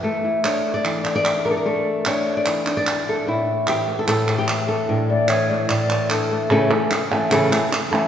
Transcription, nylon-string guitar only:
Already playing: E3
0.03 A3 A4
0.24 E4
0.44 D4 C#5
0.74 D5
0.85 E3
1.04 D4
1.16 D5
1.45 A#4
1.51 A4
1.57 A#4
1.66 A3 A4
2.06 D4 C#5
2.37 D5
2.47 E3
2.67 D4
2.77 D5
3.09 A4
3.27 A2 E4
3.67 E3 G4
3.88 A3
3.99 A4
4.08 A2 A4
4.28 E3
4.38 G4
4.69 A4
4.89 A2 D4
5.10 A3
5.30 E3
5.50 A3
5.69 A2
5.89 E3
6.10 D4
6.31 A3
6.50 A2 C#3 E3 A3 C#4 A4
6.70 E3 A3 C#4 A4
6.91 muted nylon-string guitar stroke
7.11 E3 A3 C#4 A4
7.30 A2 C#3 E3 A3 C#4 A4
7.51 E3 A3 C#4 A4
7.71 muted nylon-string guitar stroke
7.91 E3 A3 C#4 A4

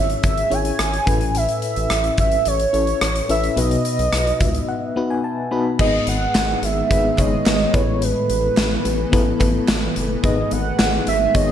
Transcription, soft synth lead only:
Already playing: E5
0.25 E5
0.54 G#5
1.37 E5
2.20 E5
2.47 C#5
2.75 C#5
3.31 E5
3.59 D#5
5.80 D#5
6.09 F#5
6.64 E5
7.20 D#5
7.74 C#5
8.03 B4
10.24 D#5
10.52 F#5
11.08 E5
11.36 D#5

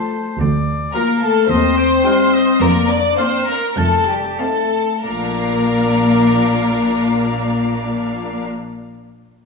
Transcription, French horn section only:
Already playing: A3
0.94 A#3
1.22 A3
1.49 C4
2.61 A#3
2.90 D4
3.19 C4
3.48 A#3
3.78 A3
4.08 G3
4.40 A3
5.05 A#3

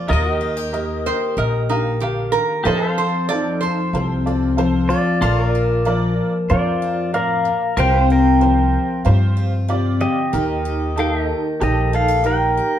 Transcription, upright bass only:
0.10 D#2
1.37 A#1
2.65 F2
3.93 C2
5.21 A#1
6.50 F2
7.77 C2
9.06 G2
10.33 D#2
11.61 A#1

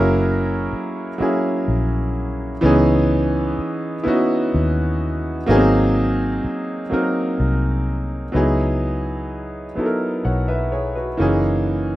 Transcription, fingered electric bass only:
Already playing: F#1
0.73 muted fingered electric bass stroke
1.20 muted fingered electric bass stroke
1.68 A#1
2.63 C#2
3.59 muted fingered electric bass stroke
4.07 muted fingered electric bass stroke
4.54 D#2
5.49 G#1
6.44 muted fingered electric bass stroke
6.92 muted fingered electric bass stroke
7.40 C2
8.35 C#2
9.77 muted fingered electric bass stroke
10.25 B1
11.20 F#1

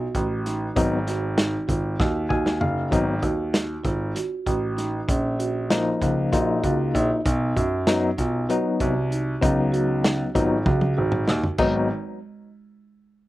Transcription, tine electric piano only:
0.76 F#3 B3 D#4
2.29 G#5
2.61 F5
2.91 F#3 B3 D#4
5.70 F3 A#3 D#4
6.32 A#3 D#4 F4
7.87 F#3 B3 D#4
8.49 F#3 B3 D#4
9.41 F#3 B3 D#4
10.35 F#3 B3 D#4
11.59 F#3 B3 D#4

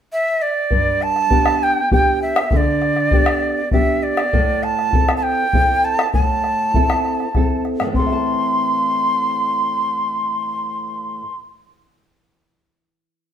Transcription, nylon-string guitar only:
0.71 G2
1.30 B3 D4 G4
1.92 B3 D4 G4
2.53 D3
3.13 B3 D4 G4
3.73 B3 D4 G4
4.33 A2
4.94 C4 E4 A4
5.55 C4 E4 A4
6.14 A2
6.75 C4 E4 A4
7.36 C4 E4 A4
7.80 A2
7.86 E3
7.93 C4
7.99 A4
8.06 E5
8.12 A5

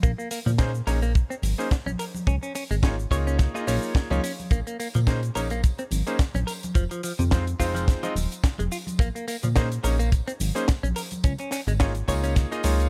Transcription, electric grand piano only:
0.59 A#3 C#4 D#4 G#4 C5
0.87 A#3 C#4 D#4 G#4 C#5
1.58 A#3 C#4 D#4 G#4 C5
2.83 A#3 D#4 F4 G#4 C#5
3.11 A#3 D#4 F4 G#4 C#5
3.54 A#3 D#4 F4 G#4 D#5
3.67 A#3 D#4 F4 G#4 C#5
4.10 A#3 D#4 F4 G#4 C#5
5.07 A#3 C#4 D#4 G#4 C5
5.35 A#3 C#4 D#4 G#4 C#5
6.07 A#3 C#4 D#4 G#4 C5
7.31 G#3 C4 D#4 F4 C5
7.59 G#3 C4 D#4 F4 C5
8.03 G#3 C4 D#4 F4 D#5
9.56 A#3 C#4 D#4 G#4 C5
9.83 A#3 C#4 D#4 G#4 C#5
10.55 A#3 C#4 D#4 G#4 C5
11.80 A#3 D#4 F4 G#4 C#5
12.08 A#3 D#4 F4 G#4 C#5
12.51 A#3 D#4 F4 G#4 D#5
12.64 A#3 D#4 F4 G#4 C#5

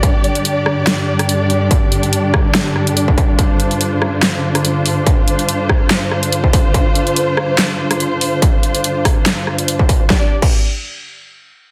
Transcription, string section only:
Already playing: G2 D3 D4 G4 D5
3.39 F4 C5
10.10 D4 G4 D5

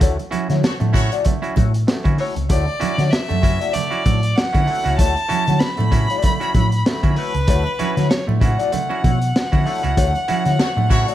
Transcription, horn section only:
0.64 A3 F#4 C#5
0.93 A3 F#4 C#5
10.59 A3 F#4 C#5
10.90 A3 F#4 C#5

